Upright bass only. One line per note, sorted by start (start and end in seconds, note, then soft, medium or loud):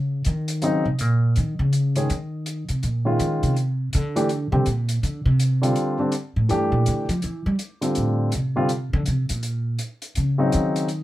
0.00 0.22 C#3 medium
0.26 0.82 D#3 loud
0.86 1.01 C3 medium
1.01 1.37 A#2 medium
1.37 1.59 D#3 medium
1.59 2.06 C#3 medium
2.10 2.66 D#3 medium
2.69 2.83 C3 medium
2.84 3.17 A#2 medium
3.20 3.42 D#3 medium
3.43 3.90 C3 medium
3.95 4.50 D3 loud
4.52 4.66 C3 loud
4.67 5.01 A#2 medium
5.03 5.25 D3 medium
5.26 5.72 C3 medium
6.36 6.49 A2 medium
6.51 6.71 G2 medium
6.72 6.85 A#2 medium
6.88 7.08 D3 medium
7.09 7.22 F3 loud
7.24 7.46 E3 medium
7.46 7.54 G3 loud
7.97 8.31 A2 medium
8.35 8.90 C3 medium
8.93 9.06 D3 loud
9.08 9.29 C3 medium
9.30 9.76 A#2 medium
10.17 10.51 C#3 medium
10.54 11.03 D#3 medium